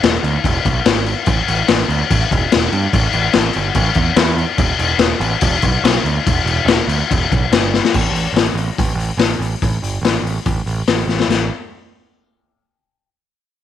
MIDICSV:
0, 0, Header, 1, 3, 480
1, 0, Start_track
1, 0, Tempo, 416667
1, 1445, Time_signature, 4, 2, 24, 8
1, 8651, Tempo, 423430
1, 15596, End_track
2, 0, Start_track
2, 0, Title_t, "Picked electric bass"
2, 0, Program_c, 0, 34
2, 34, Note_on_c, 0, 28, 98
2, 187, Note_off_c, 0, 28, 0
2, 263, Note_on_c, 0, 38, 91
2, 419, Note_off_c, 0, 38, 0
2, 518, Note_on_c, 0, 28, 102
2, 669, Note_off_c, 0, 28, 0
2, 754, Note_on_c, 0, 35, 99
2, 906, Note_off_c, 0, 35, 0
2, 984, Note_on_c, 0, 32, 100
2, 1300, Note_off_c, 0, 32, 0
2, 1461, Note_on_c, 0, 33, 102
2, 1617, Note_off_c, 0, 33, 0
2, 1708, Note_on_c, 0, 33, 84
2, 1861, Note_off_c, 0, 33, 0
2, 1950, Note_on_c, 0, 33, 99
2, 2102, Note_off_c, 0, 33, 0
2, 2169, Note_on_c, 0, 38, 93
2, 2327, Note_off_c, 0, 38, 0
2, 2425, Note_on_c, 0, 33, 104
2, 2578, Note_off_c, 0, 33, 0
2, 2668, Note_on_c, 0, 28, 97
2, 2820, Note_off_c, 0, 28, 0
2, 2934, Note_on_c, 0, 28, 103
2, 3077, Note_off_c, 0, 28, 0
2, 3138, Note_on_c, 0, 43, 94
2, 3293, Note_off_c, 0, 43, 0
2, 3377, Note_on_c, 0, 33, 105
2, 3532, Note_off_c, 0, 33, 0
2, 3611, Note_on_c, 0, 33, 87
2, 3768, Note_off_c, 0, 33, 0
2, 3864, Note_on_c, 0, 33, 102
2, 4017, Note_off_c, 0, 33, 0
2, 4101, Note_on_c, 0, 31, 89
2, 4255, Note_off_c, 0, 31, 0
2, 4322, Note_on_c, 0, 33, 110
2, 4482, Note_off_c, 0, 33, 0
2, 4553, Note_on_c, 0, 40, 99
2, 4716, Note_off_c, 0, 40, 0
2, 4795, Note_on_c, 0, 40, 109
2, 5119, Note_off_c, 0, 40, 0
2, 5277, Note_on_c, 0, 28, 106
2, 5439, Note_off_c, 0, 28, 0
2, 5518, Note_on_c, 0, 28, 90
2, 5679, Note_off_c, 0, 28, 0
2, 5739, Note_on_c, 0, 28, 100
2, 5907, Note_off_c, 0, 28, 0
2, 5989, Note_on_c, 0, 33, 100
2, 6154, Note_off_c, 0, 33, 0
2, 6241, Note_on_c, 0, 28, 105
2, 6402, Note_off_c, 0, 28, 0
2, 6484, Note_on_c, 0, 35, 98
2, 6644, Note_off_c, 0, 35, 0
2, 6722, Note_on_c, 0, 35, 97
2, 6883, Note_off_c, 0, 35, 0
2, 6955, Note_on_c, 0, 38, 96
2, 7118, Note_off_c, 0, 38, 0
2, 7224, Note_on_c, 0, 28, 100
2, 7378, Note_off_c, 0, 28, 0
2, 7421, Note_on_c, 0, 28, 91
2, 7590, Note_off_c, 0, 28, 0
2, 7658, Note_on_c, 0, 28, 100
2, 7829, Note_off_c, 0, 28, 0
2, 7916, Note_on_c, 0, 38, 88
2, 8080, Note_off_c, 0, 38, 0
2, 8192, Note_on_c, 0, 28, 102
2, 8345, Note_off_c, 0, 28, 0
2, 8425, Note_on_c, 0, 35, 94
2, 8581, Note_off_c, 0, 35, 0
2, 8658, Note_on_c, 0, 31, 103
2, 8975, Note_off_c, 0, 31, 0
2, 9145, Note_on_c, 0, 33, 94
2, 9302, Note_off_c, 0, 33, 0
2, 9325, Note_on_c, 0, 33, 77
2, 9501, Note_off_c, 0, 33, 0
2, 9576, Note_on_c, 0, 33, 89
2, 9748, Note_off_c, 0, 33, 0
2, 9818, Note_on_c, 0, 33, 84
2, 9989, Note_off_c, 0, 33, 0
2, 10099, Note_on_c, 0, 33, 95
2, 10256, Note_off_c, 0, 33, 0
2, 10281, Note_on_c, 0, 33, 86
2, 10458, Note_off_c, 0, 33, 0
2, 10538, Note_on_c, 0, 33, 96
2, 10709, Note_off_c, 0, 33, 0
2, 10782, Note_on_c, 0, 33, 84
2, 10952, Note_off_c, 0, 33, 0
2, 11054, Note_on_c, 0, 33, 92
2, 11213, Note_off_c, 0, 33, 0
2, 11275, Note_on_c, 0, 31, 80
2, 11440, Note_off_c, 0, 31, 0
2, 11492, Note_on_c, 0, 33, 89
2, 11665, Note_off_c, 0, 33, 0
2, 11724, Note_on_c, 0, 33, 80
2, 11900, Note_off_c, 0, 33, 0
2, 11994, Note_on_c, 0, 33, 90
2, 12160, Note_off_c, 0, 33, 0
2, 12224, Note_on_c, 0, 33, 78
2, 12393, Note_off_c, 0, 33, 0
2, 12467, Note_on_c, 0, 33, 88
2, 12636, Note_off_c, 0, 33, 0
2, 12676, Note_on_c, 0, 33, 77
2, 12855, Note_off_c, 0, 33, 0
2, 12924, Note_on_c, 0, 33, 86
2, 13164, Note_off_c, 0, 33, 0
2, 15596, End_track
3, 0, Start_track
3, 0, Title_t, "Drums"
3, 38, Note_on_c, 9, 49, 80
3, 40, Note_on_c, 9, 38, 105
3, 153, Note_off_c, 9, 49, 0
3, 155, Note_off_c, 9, 38, 0
3, 279, Note_on_c, 9, 49, 70
3, 394, Note_off_c, 9, 49, 0
3, 509, Note_on_c, 9, 36, 92
3, 517, Note_on_c, 9, 49, 83
3, 624, Note_off_c, 9, 36, 0
3, 632, Note_off_c, 9, 49, 0
3, 752, Note_on_c, 9, 36, 88
3, 752, Note_on_c, 9, 49, 66
3, 867, Note_off_c, 9, 36, 0
3, 867, Note_off_c, 9, 49, 0
3, 986, Note_on_c, 9, 49, 92
3, 988, Note_on_c, 9, 38, 125
3, 1101, Note_off_c, 9, 49, 0
3, 1103, Note_off_c, 9, 38, 0
3, 1224, Note_on_c, 9, 49, 68
3, 1339, Note_off_c, 9, 49, 0
3, 1451, Note_on_c, 9, 49, 87
3, 1464, Note_on_c, 9, 36, 109
3, 1566, Note_off_c, 9, 49, 0
3, 1580, Note_off_c, 9, 36, 0
3, 1705, Note_on_c, 9, 49, 68
3, 1821, Note_off_c, 9, 49, 0
3, 1937, Note_on_c, 9, 49, 92
3, 1939, Note_on_c, 9, 38, 109
3, 2052, Note_off_c, 9, 49, 0
3, 2054, Note_off_c, 9, 38, 0
3, 2190, Note_on_c, 9, 49, 76
3, 2305, Note_off_c, 9, 49, 0
3, 2424, Note_on_c, 9, 49, 97
3, 2426, Note_on_c, 9, 36, 95
3, 2539, Note_off_c, 9, 49, 0
3, 2541, Note_off_c, 9, 36, 0
3, 2664, Note_on_c, 9, 36, 90
3, 2671, Note_on_c, 9, 49, 70
3, 2780, Note_off_c, 9, 36, 0
3, 2786, Note_off_c, 9, 49, 0
3, 2901, Note_on_c, 9, 49, 102
3, 2904, Note_on_c, 9, 38, 127
3, 3017, Note_off_c, 9, 49, 0
3, 3019, Note_off_c, 9, 38, 0
3, 3139, Note_on_c, 9, 49, 68
3, 3254, Note_off_c, 9, 49, 0
3, 3378, Note_on_c, 9, 36, 112
3, 3378, Note_on_c, 9, 49, 89
3, 3493, Note_off_c, 9, 49, 0
3, 3494, Note_off_c, 9, 36, 0
3, 3604, Note_on_c, 9, 49, 71
3, 3719, Note_off_c, 9, 49, 0
3, 3839, Note_on_c, 9, 49, 85
3, 3841, Note_on_c, 9, 38, 108
3, 3954, Note_off_c, 9, 49, 0
3, 3956, Note_off_c, 9, 38, 0
3, 4069, Note_on_c, 9, 49, 77
3, 4184, Note_off_c, 9, 49, 0
3, 4314, Note_on_c, 9, 49, 88
3, 4320, Note_on_c, 9, 36, 90
3, 4430, Note_off_c, 9, 49, 0
3, 4435, Note_off_c, 9, 36, 0
3, 4545, Note_on_c, 9, 49, 66
3, 4560, Note_on_c, 9, 36, 91
3, 4660, Note_off_c, 9, 49, 0
3, 4675, Note_off_c, 9, 36, 0
3, 4796, Note_on_c, 9, 49, 93
3, 4798, Note_on_c, 9, 38, 121
3, 4911, Note_off_c, 9, 49, 0
3, 4913, Note_off_c, 9, 38, 0
3, 5046, Note_on_c, 9, 49, 65
3, 5161, Note_off_c, 9, 49, 0
3, 5274, Note_on_c, 9, 49, 85
3, 5280, Note_on_c, 9, 36, 113
3, 5389, Note_off_c, 9, 49, 0
3, 5396, Note_off_c, 9, 36, 0
3, 5520, Note_on_c, 9, 49, 71
3, 5635, Note_off_c, 9, 49, 0
3, 5747, Note_on_c, 9, 49, 86
3, 5749, Note_on_c, 9, 38, 109
3, 5862, Note_off_c, 9, 49, 0
3, 5864, Note_off_c, 9, 38, 0
3, 6000, Note_on_c, 9, 49, 80
3, 6115, Note_off_c, 9, 49, 0
3, 6230, Note_on_c, 9, 49, 100
3, 6245, Note_on_c, 9, 36, 96
3, 6346, Note_off_c, 9, 49, 0
3, 6360, Note_off_c, 9, 36, 0
3, 6473, Note_on_c, 9, 49, 72
3, 6485, Note_on_c, 9, 36, 89
3, 6588, Note_off_c, 9, 49, 0
3, 6601, Note_off_c, 9, 36, 0
3, 6737, Note_on_c, 9, 49, 98
3, 6739, Note_on_c, 9, 38, 127
3, 6852, Note_off_c, 9, 49, 0
3, 6854, Note_off_c, 9, 38, 0
3, 6980, Note_on_c, 9, 49, 67
3, 7095, Note_off_c, 9, 49, 0
3, 7217, Note_on_c, 9, 49, 97
3, 7219, Note_on_c, 9, 36, 117
3, 7333, Note_off_c, 9, 49, 0
3, 7334, Note_off_c, 9, 36, 0
3, 7455, Note_on_c, 9, 49, 71
3, 7570, Note_off_c, 9, 49, 0
3, 7694, Note_on_c, 9, 49, 86
3, 7697, Note_on_c, 9, 38, 114
3, 7810, Note_off_c, 9, 49, 0
3, 7812, Note_off_c, 9, 38, 0
3, 7939, Note_on_c, 9, 49, 77
3, 8055, Note_off_c, 9, 49, 0
3, 8189, Note_on_c, 9, 36, 93
3, 8192, Note_on_c, 9, 49, 87
3, 8305, Note_off_c, 9, 36, 0
3, 8307, Note_off_c, 9, 49, 0
3, 8430, Note_on_c, 9, 36, 95
3, 8430, Note_on_c, 9, 49, 64
3, 8545, Note_off_c, 9, 36, 0
3, 8545, Note_off_c, 9, 49, 0
3, 8668, Note_on_c, 9, 49, 95
3, 8670, Note_on_c, 9, 38, 120
3, 8781, Note_off_c, 9, 49, 0
3, 8783, Note_off_c, 9, 38, 0
3, 8909, Note_on_c, 9, 38, 72
3, 9023, Note_off_c, 9, 38, 0
3, 9030, Note_on_c, 9, 38, 99
3, 9140, Note_on_c, 9, 57, 104
3, 9144, Note_off_c, 9, 38, 0
3, 9144, Note_on_c, 9, 36, 105
3, 9253, Note_off_c, 9, 57, 0
3, 9258, Note_off_c, 9, 36, 0
3, 9380, Note_on_c, 9, 46, 54
3, 9494, Note_off_c, 9, 46, 0
3, 9617, Note_on_c, 9, 46, 70
3, 9619, Note_on_c, 9, 38, 103
3, 9731, Note_off_c, 9, 46, 0
3, 9733, Note_off_c, 9, 38, 0
3, 9857, Note_on_c, 9, 46, 65
3, 9970, Note_off_c, 9, 46, 0
3, 10096, Note_on_c, 9, 36, 107
3, 10100, Note_on_c, 9, 46, 81
3, 10210, Note_off_c, 9, 36, 0
3, 10213, Note_off_c, 9, 46, 0
3, 10338, Note_on_c, 9, 46, 59
3, 10451, Note_off_c, 9, 46, 0
3, 10558, Note_on_c, 9, 46, 78
3, 10560, Note_on_c, 9, 38, 108
3, 10671, Note_off_c, 9, 46, 0
3, 10673, Note_off_c, 9, 38, 0
3, 10818, Note_on_c, 9, 46, 58
3, 10932, Note_off_c, 9, 46, 0
3, 11041, Note_on_c, 9, 46, 74
3, 11045, Note_on_c, 9, 36, 104
3, 11155, Note_off_c, 9, 46, 0
3, 11159, Note_off_c, 9, 36, 0
3, 11287, Note_on_c, 9, 46, 56
3, 11400, Note_off_c, 9, 46, 0
3, 11526, Note_on_c, 9, 46, 69
3, 11528, Note_on_c, 9, 38, 104
3, 11639, Note_off_c, 9, 46, 0
3, 11641, Note_off_c, 9, 38, 0
3, 11775, Note_on_c, 9, 46, 61
3, 11889, Note_off_c, 9, 46, 0
3, 11991, Note_on_c, 9, 46, 65
3, 11997, Note_on_c, 9, 36, 105
3, 12104, Note_off_c, 9, 46, 0
3, 12110, Note_off_c, 9, 36, 0
3, 12231, Note_on_c, 9, 46, 51
3, 12345, Note_off_c, 9, 46, 0
3, 12466, Note_on_c, 9, 46, 71
3, 12468, Note_on_c, 9, 38, 116
3, 12579, Note_off_c, 9, 46, 0
3, 12581, Note_off_c, 9, 38, 0
3, 12706, Note_on_c, 9, 38, 56
3, 12819, Note_off_c, 9, 38, 0
3, 12832, Note_on_c, 9, 38, 79
3, 12946, Note_off_c, 9, 38, 0
3, 12949, Note_on_c, 9, 55, 77
3, 12951, Note_on_c, 9, 38, 88
3, 13062, Note_off_c, 9, 55, 0
3, 13065, Note_off_c, 9, 38, 0
3, 15596, End_track
0, 0, End_of_file